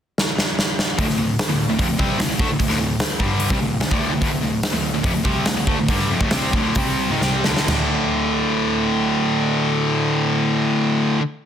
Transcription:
0.18 snare
0.38 snare
0.59 snare
0.79 snare
0.98 D2 A2, kick, open hi-hat
1.08 D2 A2, snare
1.18 D2 A2
1.39 snare, open hi-hat
1.49 D2 A2
1.69 D2 A2
1.78 F2 C3, kick, open hi-hat
1.88 D2 A2
1.98 C2 C3 G3 C4, kick
2.18 D2 A2, snare, open hi-hat
2.28 D2 A2
2.39 D2 D3 A3, kick
2.48 D2 A2
2.59 D2 A2, kick, open hi-hat
2.68 D2 A2, snare
2.79 D2 A2
3.00 snare, open hi-hat
3.19 G2 D3 G3, kick
3.40 open hi-hat
3.50 C2 C3 G3, kick
3.60 D2 A2
3.80 D2 A2, snare, open hi-hat
3.91 D2 A2 D3, kick
4.11 D2 A2
4.21 D2 A2, kick, open hi-hat
4.32 D2 A2
4.42 D2 A2
4.63 snare, open hi-hat
4.72 D2 A2
4.94 D2 A2
5.03 F2 C3, kick, open hi-hat
5.14 D2 A2
5.24 C2 C3 G3 C4, kick
5.46 D2 A2, snare, open hi-hat
5.57 D2 A2
5.67 D2 D3 A3, kick
5.78 D2 A2
5.88 G2 D3 G3, kick, open hi-hat
5.99 snare
6.10 F2 C3
6.21 D2 A2, kick
6.31 C2 C3 G3 C4, snare, open hi-hat
6.53 D2 A2 D3, kick
6.75 C2 C3 G3 C4, kick, open hi-hat
7.09 G#2 D#3
7.21 C2 C3 G3 C4, snare
7.44 D2 A2 D3, snare
7.57 snare
7.67 D2 A2, snare, floor tom, crash
7.72 D3

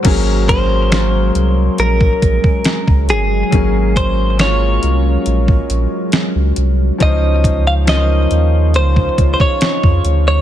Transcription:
0.03 G#1 F#3 G#3 A#3 C#4, kick, closed hi-hat, crash
0.08 G#4
0.49 C5, kick, closed hi-hat
0.90 F#3 A#3 C#4, snare, closed hi-hat
0.95 A#4
1.35 C2, closed hi-hat
1.78 A#1 A#4, closed hi-hat
2.01 kick
2.22 A#1, kick, closed hi-hat
2.44 kick
2.65 snare, closed hi-hat
2.88 C#2, kick
3.09 G1 G#4, closed hi-hat
3.51 G#1 F#3 A#3 C#4, kick, closed hi-hat
3.56 G#4
3.96 C5, kick, closed hi-hat
4.37 F#3 A#3 C#4 C#5, snare, closed hi-hat
4.42 F4
4.83 C2, closed hi-hat
5.26 A#1, closed hi-hat
5.48 kick
5.70 A#1, closed hi-hat
6.12 snare, closed hi-hat
6.35 C#2
6.56 C2, closed hi-hat
6.98 C#2 C#3 F3 C#4 D#4 F4, kick, closed hi-hat
7.02 C5 D#5
7.44 kick, closed hi-hat
7.67 F5
7.85 F3 C#4 D#4 D#5, snare, closed hi-hat
7.90 A#4
7.97 C5
8.31 D#2, closed hi-hat
8.74 C#2 C5, closed hi-hat
8.96 kick
9.18 C#2, kick, closed hi-hat
9.34 C5
9.40 C#5, kick
9.61 snare, closed hi-hat
9.83 F2, kick
10.05 D2, closed hi-hat
10.28 C#5

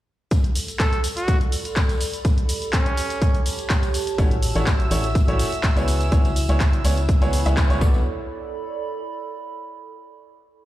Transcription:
0.31 A4, kick, closed hi-hat, tambourine, cabasa
0.44 closed hi-hat, cabasa
0.55 open hi-hat, tambourine, cabasa
0.68 closed hi-hat, tambourine, cabasa
0.79 A4, kick, clap, closed hi-hat, tambourine, cabasa
0.93 closed hi-hat, cabasa
0.98 D5
1.04 open hi-hat, tambourine, cabasa
1.17 F#4 B5, closed hi-hat, tambourine, cabasa
1.28 kick, closed hi-hat, tambourine, cabasa
1.41 closed hi-hat, cabasa
1.52 open hi-hat, tambourine, cabasa
1.65 closed hi-hat, tambourine, cabasa
1.76 kick, clap, closed hi-hat, tambourine, cabasa
1.89 closed hi-hat, tambourine, cabasa
2.01 open hi-hat, tambourine, cabasa
2.13 closed hi-hat, tambourine, cabasa
2.25 G4, kick, closed hi-hat, tambourine, cabasa
2.38 closed hi-hat, cabasa
2.49 open hi-hat, tambourine, cabasa
2.62 closed hi-hat, tambourine, cabasa
2.73 C#4, kick, clap, closed hi-hat, tambourine, cabasa
2.86 closed hi-hat, cabasa
2.96 C#5, open hi-hat, tambourine, cabasa
3.10 A5, closed hi-hat, tambourine, cabasa
3.22 kick, closed hi-hat, tambourine, cabasa
3.35 closed hi-hat, cabasa
3.46 open hi-hat, tambourine, cabasa
3.58 closed hi-hat, tambourine, cabasa
3.70 kick, clap, closed hi-hat, tambourine, cabasa
3.83 closed hi-hat, tambourine, cabasa
3.94 open hi-hat, tambourine, cabasa
4.07 closed hi-hat, tambourine, cabasa
4.18 A1 A3 C#4 E4 F#4 C#5 E6, kick, closed hi-hat, tambourine, cabasa
4.30 E5, closed hi-hat, cabasa
4.43 open hi-hat, tambourine, cabasa
4.55 A1 A3 C#4 E4 F#4 C#5, closed hi-hat, tambourine, cabasa
4.66 kick, clap, closed hi-hat, tambourine, cabasa
4.80 closed hi-hat, cabasa
4.91 A1 A3 C#4 E4 F#4 C#5, open hi-hat, tambourine, cabasa
5.03 closed hi-hat, tambourine, cabasa
5.15 kick, closed hi-hat, tambourine, cabasa
5.28 A1 A3 C#4 E4 F#4 C#5, closed hi-hat, cabasa
5.39 open hi-hat, tambourine, cabasa
5.52 closed hi-hat, tambourine, cabasa
5.63 kick, clap, closed hi-hat, tambourine, cabasa
5.76 C#2 B3 C#4 E4 G#4 C#5, closed hi-hat, tambourine, cabasa
5.88 E4, open hi-hat, tambourine, cabasa
6.01 closed hi-hat, tambourine, cabasa
6.12 C#2 B3 C#4 E4 G#4 C#5, kick, closed hi-hat, tambourine, cabasa
6.25 closed hi-hat, tambourine, cabasa
6.36 open hi-hat, tambourine, cabasa
6.49 C#2 B3 C#4 E4 G#4 C#5, closed hi-hat, tambourine, cabasa
6.60 kick, clap, closed hi-hat, tambourine, cabasa
6.73 closed hi-hat, cabasa
6.85 C#2 B3 C#4 E4 G#4 C#5 B5, open hi-hat, tambourine, cabasa
6.97 closed hi-hat, tambourine, cabasa
7.09 kick, closed hi-hat, tambourine, cabasa
7.21 C#2 B3 C#4 E4 G#4 C#5, closed hi-hat, tambourine, cabasa
7.33 open hi-hat, tambourine, cabasa
7.45 C#2 B3 C#4 E4 G#4 E5, closed hi-hat, tambourine, cabasa
7.57 kick, clap, closed hi-hat, tambourine, cabasa
7.70 C#2 B3 C#4 E4 G#4 C#5, closed hi-hat, tambourine, cabasa
7.81 B1 B3 D4 F#4 A4 D5, kick, tambourine
7.89 D5
7.94 tambourine
8.21 B5

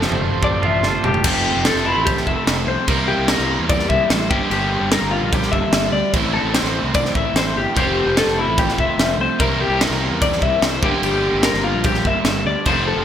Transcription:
Already playing: F2 C3 F3 A3 C4 D4 G4
0.00 F3 C5, snare
0.11 F1, floor tom, mid tom
0.22 A3
0.31 A1
0.42 D4 D5, kick, floor tom
0.62 A1 F4 E5, floor tom
0.83 G1 D4 C5, snare
1.02 F1 A3 G4, mid tom
1.14 floor tom
1.24 F1 F2 C3 F3 A3 C4 G4, kick, crash
1.55 F1
1.65 A4, snare, crash
1.74 F1, snare
1.86 E4
1.96 A1
2.05 G4, kick, crash
2.17 snare
2.26 F1 E5, kick
2.47 F1, snare, crash
2.67 C2 C5
2.87 C2 C3 G3 A#3 E4 A#4, kick, crash
3.08 G4
3.18 C2
3.28 A#4, snare, crash
3.38 C2, snare
3.59 E2
3.69 D5, kick, crash
3.79 snare
3.89 C2 E5, kick
4.09 A1 C5, snare, crash
4.31 G1 G2 D3 G3 A#3 D4 G4, kick
4.50 G1 G4, crash
4.81 G1
4.92 A#4, snare, crash
5.02 G1
5.11 F4
5.22 A#1
5.32 G4, kick, crash
5.43 snare
5.52 G1 E5, kick
5.72 G1, snare, crash
5.92 D2 D5
6.13 A1 A2 E3 A3 C4 E4 C5, kick, crash
6.34 A4
6.43 A1
6.54 C5, snare, crash
6.63 A1, snare
6.83 C2
6.94 D5, kick, crash
7.05 snare
7.14 A1 E5, kick
7.34 A1 C5, snare, crash
7.56 G1 G4
7.75 F1 F3 A3 C4 F4 G4, kick, crash
8.06 F1
8.17 A4, snare, crash
8.26 F1, snare
8.39 E4
8.47 A1
8.58 G4, kick, crash
8.69 snare
8.78 F1 E5, kick
8.98 F1, snare, crash
9.17 C2 C5
9.39 C2 C3 G3 A#3 E4 A#4, kick, crash
9.61 G4
9.68 C2
9.81 A#4, snare, crash
9.90 C2, snare
10.10 E2
10.22 D5, kick, crash
10.33 snare
10.41 C2 E5, kick
10.61 C2 C5, snare, crash
10.82 G1 G2 D3 G3 A#3 D4 G4, kick
11.02 G1 G4, crash
11.33 G1
11.43 A#4, snare, crash
11.54 G1, snare
11.64 F4
11.74 A#1
11.84 G4, kick, crash
11.95 snare
12.05 G1 E5, kick
12.24 G1, snare, crash
12.45 D2 D5
12.66 F1 F2 C3 F3 A3 C4 C5, kick, crash
12.88 A4
12.96 F1

